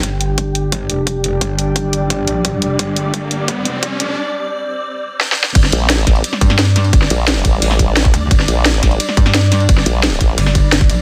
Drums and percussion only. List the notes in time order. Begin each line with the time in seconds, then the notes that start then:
0.03 kick, closed hi-hat
0.21 closed hi-hat
0.38 kick, closed hi-hat
0.55 closed hi-hat
0.72 kick, closed hi-hat
0.90 closed hi-hat
1.07 kick, closed hi-hat
1.24 closed hi-hat
1.41 kick, closed hi-hat
1.59 closed hi-hat
1.76 kick, closed hi-hat
1.93 closed hi-hat
2.10 kick, closed hi-hat
2.27 closed hi-hat
2.45 kick, closed hi-hat
2.62 closed hi-hat
2.79 kick, closed hi-hat
2.96 closed hi-hat
3.14 kick, closed hi-hat
3.31 closed hi-hat
3.48 kick, closed hi-hat
3.65 closed hi-hat
3.83 kick, closed hi-hat
4.00 closed hi-hat
5.21 snare
5.32 snare
5.44 snare
5.55 kick, closed hi-hat, crash, ride
5.64 snare, ride
5.72 closed hi-hat, ride
5.90 snare, closed hi-hat, ride
5.98 snare
6.07 kick, snare, closed hi-hat, ride
6.15 ride
6.24 closed hi-hat, ride
6.33 snare
6.41 kick, closed hi-hat, ride
6.50 snare, ride
6.59 snare, closed hi-hat, ride
6.76 snare, closed hi-hat, ride
6.84 ride
6.93 kick, closed hi-hat, ride
7.02 snare
7.10 closed hi-hat, ride
7.28 snare, closed hi-hat, ride
7.36 snare
7.45 kick, closed hi-hat, ride
7.62 closed hi-hat, open hi-hat
7.71 snare
7.79 kick, closed hi-hat, ride
7.96 snare, closed hi-hat, ride
8.05 kick
8.14 closed hi-hat, ride
8.31 kick, closed hi-hat, ride
8.40 snare, ride
8.48 closed hi-hat, ride
8.65 snare, closed hi-hat, ride
8.74 snare
8.83 kick, snare, closed hi-hat, ride
8.91 ride
9.00 closed hi-hat, ride
9.09 snare
9.17 kick, closed hi-hat, ride
9.26 snare, ride
9.34 snare, closed hi-hat, ride
9.52 snare, closed hi-hat, ride
9.60 ride
9.69 kick, closed hi-hat, ride
9.78 snare
9.86 closed hi-hat, ride
10.03 snare, closed hi-hat, ride
10.12 snare
10.21 kick, closed hi-hat, ride
10.38 closed hi-hat, open hi-hat
10.46 snare
10.55 kick, closed hi-hat, ride
10.72 snare, closed hi-hat, ride
10.81 kick
10.90 closed hi-hat, ride